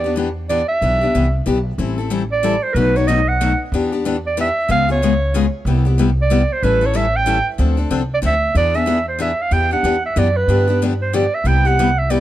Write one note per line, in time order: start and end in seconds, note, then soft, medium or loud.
0.00 0.62 E2 medium
0.00 0.16 G4 medium
0.00 0.14 D5 medium
0.06 0.16 B3 soft
0.06 0.16 D4 medium
0.16 0.27 E3 medium
0.16 0.28 B3 medium
0.16 0.28 D4 medium
0.16 0.28 G4 medium
0.49 0.60 E3 medium
0.49 0.61 B3 medium
0.49 0.61 D4 medium
0.49 0.61 G4 medium
0.49 0.68 D5 medium
0.68 1.42 E5 loud
0.81 1.08 B1 medium
0.81 1.00 E3 medium
0.81 1.01 B3 medium
0.81 1.01 D4 medium
0.81 1.00 G4 medium
1.01 1.14 B3 soft
1.01 1.14 D4 soft
1.01 1.14 G4 medium
1.15 1.42 C2 medium
1.15 1.25 E3 medium
1.15 1.25 B3 medium
1.15 1.25 D4 medium
1.15 1.26 G4 medium
1.46 1.74 B1 medium
1.46 1.57 E3 medium
1.46 1.57 B3 medium
1.46 1.57 D4 medium
1.46 1.58 G4 medium
1.78 2.56 A1 medium
1.78 1.97 E3 medium
1.78 1.97 G3 medium
1.78 1.98 C4 medium
1.78 1.98 E4 medium
1.78 1.97 A4 medium
1.98 2.10 C4 soft
1.98 2.10 E4 soft
1.98 2.10 A4 soft
2.10 2.21 E3 medium
2.10 2.22 G3 medium
2.10 2.22 C4 medium
2.10 2.22 E4 medium
2.10 2.22 A4 medium
2.32 2.64 D5 medium
2.43 2.54 E3 medium
2.43 2.54 G3 medium
2.43 2.54 C4 medium
2.43 2.55 E4 medium
2.43 2.55 A4 medium
2.63 2.71 C5 medium
2.73 3.52 B1 medium
2.73 2.94 B2 medium
2.73 2.95 F#3 medium
2.73 2.94 A3 medium
2.73 2.95 D#4 medium
2.73 2.76 A#4 medium
2.73 2.98 B4 medium
2.77 2.95 F#4 medium
2.96 3.07 A3 soft
2.96 3.08 D#4 medium
2.96 3.08 F#4 medium
2.96 3.09 C#5 medium
3.07 3.19 B2 medium
3.07 3.19 F#3 medium
3.07 3.19 A3 medium
3.07 3.19 D#4 medium
3.07 3.19 F#4 medium
3.07 3.30 D#5 medium
3.28 3.60 F#5 medium
3.41 3.51 B2 medium
3.41 3.51 F#3 medium
3.41 3.51 A3 medium
3.41 3.51 D#4 medium
3.41 3.52 F#4 medium
3.72 4.49 E2 medium
3.72 3.91 E3 medium
3.72 3.91 B3 medium
3.72 3.92 D4 medium
3.72 3.91 G4 medium
3.92 4.05 B3 soft
3.92 4.05 D4 medium
3.92 4.04 G4 medium
4.05 4.16 E3 medium
4.05 4.16 B3 medium
4.05 4.16 D4 medium
4.05 4.16 G4 medium
4.26 4.37 D5 medium
4.37 4.48 E3 medium
4.37 4.48 B3 medium
4.37 4.48 D4 loud
4.37 4.48 G4 medium
4.37 4.69 E5 medium
4.68 5.46 C#2 medium
4.68 4.87 C#3 medium
4.68 4.88 G#3 medium
4.68 4.88 B3 medium
4.68 4.88 F4 medium
4.68 4.88 G#4 medium
4.68 4.88 F5 loud
4.89 5.02 B3 soft
4.89 5.01 F4 medium
4.89 5.01 G#4 medium
4.89 5.50 C#5 medium
5.02 5.12 C#3 medium
5.02 5.13 G#3 medium
5.02 5.13 B3 medium
5.02 5.13 F4 medium
5.02 5.13 G#4 medium
5.34 5.44 C#3 medium
5.34 5.45 G#3 medium
5.34 5.45 B3 medium
5.34 5.45 F4 medium
5.34 5.45 G#4 loud
5.65 6.42 C2 medium
5.65 5.84 C3 medium
5.65 5.85 G3 medium
5.65 5.85 B3 medium
5.65 5.85 E4 medium
5.65 5.84 G4 medium
5.85 5.98 B3 soft
5.85 5.98 E4 medium
5.85 5.97 G4 medium
5.98 6.09 C3 medium
5.98 6.09 G3 medium
5.98 6.09 B3 medium
5.98 6.09 E4 medium
5.98 6.09 G4 medium
6.22 6.54 D5 medium
6.30 6.41 C3 loud
6.30 6.41 G3 medium
6.30 6.41 B3 medium
6.30 6.41 E4 loud
6.30 6.41 G4 loud
6.52 6.65 C5 medium
6.63 7.40 A1 medium
6.63 6.81 E3 medium
6.63 6.81 G3 medium
6.63 6.81 C#4 medium
6.63 6.81 E4 medium
6.63 6.80 A4 medium
6.63 6.87 B4 medium
6.81 6.94 C#4 soft
6.81 6.93 E4 soft
6.81 6.94 A4 medium
6.86 6.98 C#5 medium
6.94 7.05 E3 medium
6.94 7.05 G3 medium
6.94 7.05 C#4 medium
6.94 7.05 E4 medium
6.94 7.05 A4 medium
6.94 7.18 E5 medium
7.16 7.47 G5 loud
7.26 7.37 E3 medium
7.26 7.37 G3 medium
7.26 7.37 C#4 medium
7.26 7.37 E4 medium
7.26 7.38 A4 medium
7.58 7.84 D2 medium
7.58 7.77 D3 medium
7.58 7.77 F3 medium
7.58 7.77 C4 medium
7.58 7.77 D4 medium
7.58 7.76 A4 medium
7.77 7.89 C4 soft
7.77 7.90 D4 medium
7.77 7.90 A4 soft
7.90 8.18 C2 medium
7.90 8.01 D3 medium
7.90 8.01 F3 medium
7.90 8.01 C4 medium
7.90 8.01 D4 medium
7.90 8.02 A4 medium
8.14 8.19 D5 medium
8.22 8.50 D2 medium
8.22 8.33 D3 medium
8.22 8.34 F3 medium
8.22 8.34 C4 medium
8.22 8.34 D4 medium
8.22 8.34 A4 loud
8.26 8.54 E5 loud
8.55 9.32 E2 medium
8.55 8.74 E3 medium
8.55 8.74 B3 medium
8.55 8.74 D4 medium
8.55 8.73 G#4 medium
8.55 8.77 D5 loud
8.74 8.86 B3 soft
8.74 8.86 D4 medium
8.74 8.86 G#4 medium
8.74 9.07 E5 medium
8.86 8.97 E3 medium
8.86 8.98 B3 medium
8.86 8.98 D4 medium
8.86 8.98 G#4 medium
9.08 9.19 C5 medium
9.19 9.30 E3 medium
9.19 9.30 B3 medium
9.19 9.30 D4 medium
9.19 9.31 G#4 medium
9.19 9.43 E5 medium
9.41 9.54 F5 medium
9.51 9.77 E2 medium
9.51 9.70 E3 medium
9.51 9.70 B3 medium
9.51 9.70 D4 medium
9.51 9.70 G4 medium
9.51 9.71 G5 loud
9.71 9.84 B3 soft
9.71 9.84 D4 soft
9.71 9.83 G4 medium
9.71 10.02 F#5 medium
9.83 10.11 E2 medium
9.83 9.95 E3 medium
9.83 9.95 B3 medium
9.83 9.95 D4 medium
9.83 9.95 G4 medium
10.06 10.20 E5 medium
10.16 10.44 F#2 medium
10.16 10.27 E3 medium
10.16 10.27 B3 medium
10.16 10.27 D4 medium
10.16 10.27 G4 medium
10.16 10.38 D5 medium
10.37 10.81 B4 medium
10.48 11.25 G2 medium
10.48 10.67 D3 medium
10.48 10.67 F3 medium
10.48 10.67 B3 medium
10.48 10.67 D4 medium
10.48 10.66 G4 medium
10.68 10.81 B3 soft
10.68 10.81 D4 medium
10.68 10.80 G4 medium
10.82 10.92 D3 medium
10.82 10.92 F3 medium
10.82 10.92 B3 medium
10.82 10.92 D4 medium
10.82 10.93 G4 medium
11.02 11.16 C5 medium
11.13 11.24 D3 medium
11.13 11.24 F3 medium
11.13 11.24 B3 medium
11.13 11.24 D4 medium
11.13 11.24 G4 loud
11.13 11.36 D5 medium
11.35 11.49 E5 medium
11.44 12.20 C2 medium
11.44 11.64 C3 medium
11.44 11.64 G3 medium
11.44 11.64 B3 medium
11.44 11.64 E4 medium
11.44 11.64 G4 medium
11.44 11.68 G5 loud
11.65 11.78 B3 soft
11.65 11.78 E4 soft
11.65 11.77 G4 medium
11.65 12.00 F#5 loud
11.79 11.89 C3 medium
11.79 11.89 G3 medium
11.79 11.89 B3 medium
11.79 11.89 E4 medium
11.79 11.89 G4 medium
11.98 12.12 E5 medium
12.10 12.20 C3 medium
12.10 12.20 G3 medium
12.10 12.20 B3 medium
12.10 12.20 E4 medium
12.10 12.20 G4 medium
12.10 12.20 D5 medium